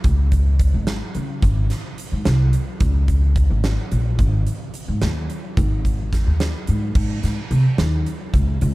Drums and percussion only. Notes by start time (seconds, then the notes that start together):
0.04 kick, closed hi-hat
0.32 kick, closed hi-hat
0.59 kick, closed hi-hat
0.87 snare, closed hi-hat
1.15 closed hi-hat
1.42 kick, closed hi-hat
1.70 snare, closed hi-hat
1.98 closed hi-hat
2.25 snare, closed hi-hat
2.53 closed hi-hat
2.80 kick, closed hi-hat
3.08 kick, closed hi-hat
3.36 kick, closed hi-hat
3.64 snare, closed hi-hat
3.92 closed hi-hat
4.19 kick, closed hi-hat
4.47 closed hi-hat
4.74 closed hi-hat
5.02 snare, closed hi-hat
5.30 closed hi-hat
5.57 kick, closed hi-hat
5.85 kick, closed hi-hat
6.13 kick, snare, closed hi-hat
6.40 snare, closed hi-hat
6.67 closed hi-hat
6.95 kick, crash
7.23 snare, closed hi-hat
7.51 closed hi-hat
7.78 snare, closed hi-hat
8.06 closed hi-hat
8.34 kick, closed hi-hat
8.61 closed hi-hat